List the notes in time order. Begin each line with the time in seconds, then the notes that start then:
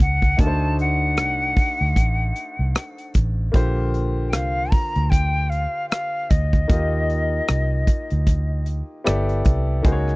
Already playing: G#3 C#4 D#4 F#4 A#4
0.00 C#2 F#5, kick
0.22 kick
0.37 D2 A3 D4 D#4 F#4 A#4 A5, kick, closed hi-hat
0.47 C5
0.79 F#5, closed hi-hat
1.17 C2, cross-stick, closed hi-hat
1.57 kick, open hi-hat
1.81 D2
1.96 A1, kick, closed hi-hat
2.36 closed hi-hat
2.59 C2
2.75 cross-stick, closed hi-hat
2.98 closed hi-hat
3.14 A1, kick, closed hi-hat
3.52 A#1 D3 A#3 F4 G4 C5, kick, closed hi-hat
3.94 closed hi-hat
4.28 G5
4.33 C2 F5, cross-stick, closed hi-hat
4.71 A#5, kick, open hi-hat
4.96 D2, closed hi-hat
5.10 G5, kick, closed hi-hat
5.50 F5, closed hi-hat
5.89 F5, cross-stick, closed hi-hat
6.30 D2 D#5, kick, closed hi-hat
6.53 kick
6.68 D#2 A#3 D#4 F4 G4 D#5, kick, closed hi-hat
7.10 closed hi-hat
7.48 C2, cross-stick, closed hi-hat
7.87 kick, closed hi-hat
8.10 D2, closed hi-hat
8.27 kick, closed hi-hat
8.66 closed hi-hat
9.04 G1 B3 E4 G4 A4 D5, cross-stick, closed hi-hat
9.29 closed hi-hat
9.45 C2, kick, closed hi-hat
9.82 C#2 A#3 D#4 F#4 G#4 C5, kick, closed hi-hat
9.92 C#5
10.08 cross-stick